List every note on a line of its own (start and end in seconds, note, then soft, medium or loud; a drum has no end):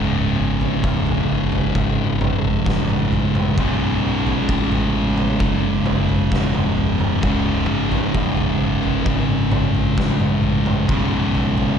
0.00 0.34 C#1 medium
0.00 3.55 C#2 medium
0.00 3.56 G#2 loud
0.00 3.56 C#3 loud
0.39 0.80 G#1 medium
0.61 floor tom medium
0.84 1.26 E1 medium
0.84 kick loud
1.07 floor tom medium
1.30 1.71 F#1 medium
1.52 floor tom medium
1.75 2.63 G#1 loud
1.75 kick loud
1.75 floor tom medium
2.21 floor tom medium
2.21 mid tom medium
2.44 floor tom medium
2.66 3.54 A1 medium
2.66 kick loud
2.66 snare medium
2.89 mid tom medium
3.12 floor tom medium
3.35 mid tom medium
3.58 4.45 B1 loud
3.58 7.21 C#2 loud
3.58 7.22 G#2 medium
3.58 7.22 C#3 loud
3.58 kick loud
3.58 floor tom medium
4.27 floor tom medium
4.49 5.36 A1 medium
4.49 kick loud
4.72 floor tom medium
5.18 floor tom medium
5.40 6.28 F#1 loud
5.40 kick loud
5.40 floor tom medium
5.86 floor tom medium
5.86 mid tom medium
6.09 floor tom medium
6.32 7.20 E1 medium
6.32 kick loud
6.32 snare medium
6.55 mid tom medium
6.77 floor tom medium
7.00 mid tom medium
7.23 7.65 C#1 loud
7.23 10.87 C#2 loud
7.23 10.88 G#2 loud
7.23 10.89 C#3 loud
7.23 kick loud
7.23 floor tom medium
7.69 8.11 G#1 medium
7.92 floor tom medium
8.14 8.56 E1 medium
8.14 kick loud
8.37 floor tom medium
8.61 9.03 F#1 medium
8.83 floor tom medium
9.06 9.94 G#1 loud
9.06 kick loud
9.06 floor tom medium
9.52 floor tom medium
9.52 mid tom medium
9.75 floor tom medium
9.98 10.86 A1 medium
9.98 kick loud
9.98 snare medium
10.20 mid tom medium
10.43 floor tom medium
10.66 mid tom medium
10.88 11.77 B1 loud
10.88 11.79 C#2 medium
10.88 11.79 G#2 medium
10.88 kick loud
10.88 floor tom medium
10.93 11.79 C#3 loud
11.35 floor tom medium
11.58 floor tom medium